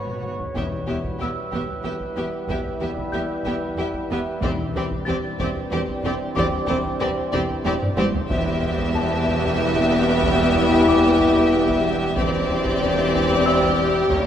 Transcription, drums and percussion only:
0.07 taiko mid
0.23 taiko mid
0.40 taiko low
0.56 taiko
0.72 taiko low
0.88 taiko low
1.04 taiko
1.20 taiko low
1.53 taiko
1.68 taiko low
2.00 taiko
2.48 taiko
2.65 taiko low
2.81 taiko low
2.97 taiko
3.13 taiko low
3.45 taiko
3.61 taiko low
3.94 taiko
4.42 taiko
4.59 taiko low
4.75 taiko low
4.91 taiko
5.08 taiko low
5.40 taiko
5.56 taiko low
5.88 taiko
6.37 taiko
6.53 taiko low
6.69 taiko low
6.85 taiko
7.01 taiko low
7.34 taiko
7.50 taiko low
7.83 taiko low-mid
7.98 taiko high
8.14 taiko low
8.30 taiko
8.46 taiko low
8.62 taiko low
8.78 taiko
8.94 taiko low
9.27 taiko
9.43 taiko low
9.75 taiko
10.23 taiko
10.39 taiko low
10.55 taiko low
10.71 taiko
10.87 taiko low
11.20 taiko
11.36 taiko low
11.68 taiko
12.16 taiko
12.33 taiko low
12.49 taiko low
12.65 taiko
12.82 taiko low
13.14 taiko
13.30 taiko low
13.62 taiko
14.10 taiko

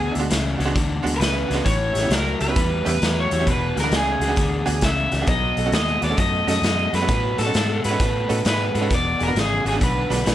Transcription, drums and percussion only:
0.15 closed hi-hat
0.30 snare, closed hi-hat
0.60 closed hi-hat
0.76 kick, closed hi-hat
1.06 closed hi-hat
1.21 snare, closed hi-hat
1.51 snare, closed hi-hat
1.66 kick, closed hi-hat
1.95 snare, closed hi-hat
2.11 snare, closed hi-hat
2.40 closed hi-hat
2.56 kick, closed hi-hat
2.86 closed hi-hat
3.02 snare, closed hi-hat
3.31 closed hi-hat
3.47 kick, closed hi-hat
3.77 snare, closed hi-hat
3.92 snare, closed hi-hat
4.21 closed hi-hat
4.36 kick, closed hi-hat
4.67 closed hi-hat
4.81 kick, snare, closed hi-hat
5.12 snare, closed hi-hat
5.27 kick, closed hi-hat
5.57 closed hi-hat
5.72 snare, closed hi-hat
6.02 closed hi-hat
6.17 kick, closed hi-hat
6.48 snare, closed hi-hat
6.63 snare, closed hi-hat
6.94 snare, closed hi-hat
7.08 kick, closed hi-hat
7.38 snare, closed hi-hat
7.54 snare, closed hi-hat
7.84 closed hi-hat
8.00 kick, closed hi-hat
8.30 closed hi-hat
8.45 snare, closed hi-hat
8.75 closed hi-hat
8.90 kick, closed hi-hat
9.20 closed hi-hat
9.36 snare, closed hi-hat
9.66 closed hi-hat
9.81 kick, closed hi-hat
10.11 snare, closed hi-hat
10.26 snare, closed hi-hat

